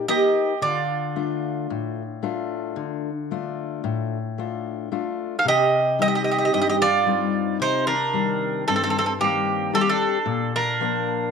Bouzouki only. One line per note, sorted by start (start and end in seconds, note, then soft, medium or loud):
0.08 0.58 D#5 medium
0.62 4.88 D5 medium
5.39 5.46 F5 medium
5.48 6.01 D#5 loud
6.02 6.07 D#5 medium
6.08 6.14 D#5 medium
6.15 6.22 D#5 medium
6.24 6.30 D#5 medium
6.31 6.37 D#5 medium
6.38 6.44 D#5 medium
6.45 6.51 D#5 medium
6.54 6.60 D#5 medium
6.62 6.67 D#5 medium
6.69 6.75 D#5 medium
6.82 7.57 D5 medium
7.62 7.86 C5 medium
7.87 8.63 A#4 medium
8.68 8.74 A4 medium
8.76 8.82 A4 medium
8.84 8.89 A4 medium
8.90 8.97 A4 medium
8.99 9.05 A4 medium
9.06 9.12 A4 medium
9.21 9.70 G4 medium
9.75 9.81 A4 medium
9.81 9.88 G4 medium
9.89 10.55 A4 medium
10.56 11.31 A#4 medium